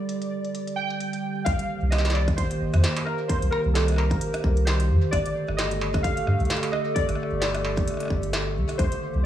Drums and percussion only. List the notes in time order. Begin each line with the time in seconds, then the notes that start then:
0.09 closed hi-hat
0.22 closed hi-hat
0.45 closed hi-hat
0.55 closed hi-hat
0.67 closed hi-hat
0.90 closed hi-hat
1.00 closed hi-hat
1.13 closed hi-hat
1.46 kick, cross-stick, closed hi-hat
1.59 closed hi-hat
1.92 cross-stick, snare, closed hi-hat
1.98 snare
2.05 snare, closed hi-hat
2.10 snare
2.15 struck metal
2.28 kick, cross-stick, closed hi-hat
2.38 kick, closed hi-hat
2.51 closed hi-hat
2.74 cross-stick, closed hi-hat
2.84 snare, closed hi-hat
2.97 closed hi-hat, struck metal
3.07 cross-stick
3.29 kick, closed hi-hat
3.42 closed hi-hat
3.52 cross-stick
3.75 snare, closed hi-hat
3.88 cross-stick, closed hi-hat
3.90 cross-stick
3.92 cross-stick
3.94 cross-stick
3.96 cross-stick, struck metal
4.11 kick, closed hi-hat
4.21 closed hi-hat
4.34 cross-stick, closed hi-hat
4.44 kick
4.57 closed hi-hat
4.67 cross-stick, snare, closed hi-hat
4.80 closed hi-hat
5.13 kick, cross-stick, closed hi-hat
5.26 closed hi-hat
5.48 cross-stick
5.59 snare, closed hi-hat
5.71 closed hi-hat
5.81 struck metal
5.94 kick, cross-stick, closed hi-hat
6.04 kick, closed hi-hat
6.17 closed hi-hat
6.27 cross-stick
6.40 closed hi-hat
6.45 closed hi-hat
6.50 snare, closed hi-hat
6.57 closed hi-hat
6.63 closed hi-hat, struck metal
6.73 cross-stick
6.96 kick, closed hi-hat
7.09 cross-stick, closed hi-hat
7.15 cross-stick
7.23 cross-stick
7.42 snare, closed hi-hat
7.55 cross-stick, closed hi-hat
7.65 struck metal
7.77 kick, closed hi-hat
7.88 cross-stick, closed hi-hat
7.91 cross-stick
7.94 cross-stick
7.97 cross-stick
8.00 cross-stick, closed hi-hat
8.03 cross-stick
8.05 cross-stick
8.08 kick, cross-stick
8.23 closed hi-hat
8.33 cross-stick, snare, closed hi-hat
8.69 cross-stick, closed hi-hat
8.79 kick, cross-stick, closed hi-hat
8.92 closed hi-hat